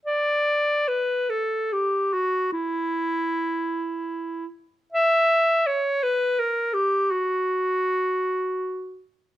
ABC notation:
X:1
M:6/8
L:1/8
Q:3/8=51
K:Edor
V:1 name="Clarinet"
d2 B A G F | E4- E z | e2 c B ^A G | F4- F z |]